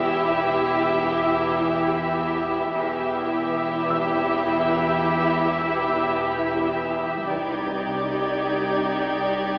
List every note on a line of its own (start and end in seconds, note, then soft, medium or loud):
0.00 2.71 E1 medium
0.00 1.04 E2 medium
0.00 2.71 E2 medium
0.00 0.47 E3 soft
0.00 2.71 E4 medium
0.00 2.73 E4 soft
0.00 2.71 G4 medium
0.00 2.72 G4 soft
0.00 2.73 B4 soft
0.00 2.71 E5 soft
0.49 3.88 E3 soft
1.05 1.61 E2 soft
1.62 2.17 E2 medium
2.18 2.74 E2 soft
2.75 7.25 E1 medium
2.75 3.32 E2 medium
2.75 7.24 E2 medium
2.75 7.24 E4 soft
2.75 7.24 E4 medium
2.75 7.24 G4 medium
2.75 7.24 B4 medium
2.75 7.25 E5 soft
2.75 7.24 G5 soft
3.33 4.44 E2 soft
3.89 5.01 E3 soft
3.89 7.25 E6 soft
4.45 5.57 E2 soft
5.02 7.33 E3 soft
5.59 6.14 E2 soft
6.15 6.71 E2 medium
6.72 7.33 E2 soft
7.27 9.58 C2 soft
7.27 7.85 C3 soft
7.27 9.58 D#4 soft
7.27 9.58 G4 soft
7.27 9.58 G4 medium
7.27 9.58 D5 soft
7.27 9.58 G6 soft
7.27 9.58 G#6 soft
7.86 8.98 C3 soft
8.43 9.54 C4 soft
8.99 9.58 C3 soft
9.53 9.58 D6 soft